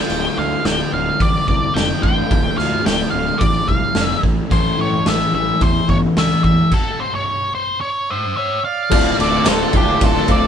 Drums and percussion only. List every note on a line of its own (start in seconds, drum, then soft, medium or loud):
0.10 open hi-hat soft
0.10 splash medium
0.65 snare loud
0.65 open hi-hat soft
1.20 kick loud
1.20 open hi-hat medium
1.48 kick medium
1.76 snare loud
1.76 open hi-hat soft
2.03 kick medium
2.31 kick loud
2.31 open hi-hat soft
2.58 snare soft
2.86 snare loud
2.86 open hi-hat medium
3.41 kick loud
3.41 open hi-hat medium
3.69 kick medium
3.95 snare medium
3.95 open hi-hat soft
4.23 kick medium
4.51 kick loud
4.51 open hi-hat soft
5.06 snare loud
5.06 open hi-hat soft
5.61 kick loud
5.61 open hi-hat soft
5.89 kick medium
6.17 snare loud
6.17 open hi-hat soft
6.44 kick medium
6.72 kick loud
6.72 crash medium
8.91 kick loud
8.91 crash loud
9.20 ride medium
9.46 snare loud
9.46 clap medium
9.46 ride loud
9.73 kick medium
9.73 ride medium
10.01 kick loud
10.01 ride loud
10.28 kick medium
10.28 ride medium